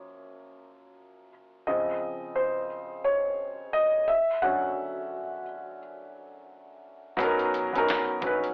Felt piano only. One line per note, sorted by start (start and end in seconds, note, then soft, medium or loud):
0.00 1.29 F#2 soft
0.00 1.29 F3 soft
0.00 1.29 A#3 medium
0.00 1.28 C#5 medium
1.67 2.67 C#3 soft
1.67 2.67 F3 soft
1.67 2.67 C4 medium
1.67 2.38 D#5 medium
2.36 3.01 C5 medium
3.05 3.76 C#5 medium
3.73 4.09 D#5 medium
4.08 4.44 E5 medium
4.42 5.42 D3 soft
4.42 5.43 F#3 soft
4.42 5.43 C#4 medium
4.42 5.77 F#5 medium
7.17 7.61 F#3 loud
7.17 7.62 B3 loud
7.17 7.62 C#4 medium
7.21 7.63 D#4 medium
7.21 7.64 A#4 loud
7.72 8.14 F#3 medium
7.72 8.14 B3 medium
7.72 8.15 C#4 medium
7.76 8.16 D#4 medium
7.76 8.16 A#4 loud
8.21 8.54 F#3 medium
8.21 8.54 B3 medium
8.21 8.54 C#4 medium
8.21 8.54 D#4 medium
8.26 8.54 B4 medium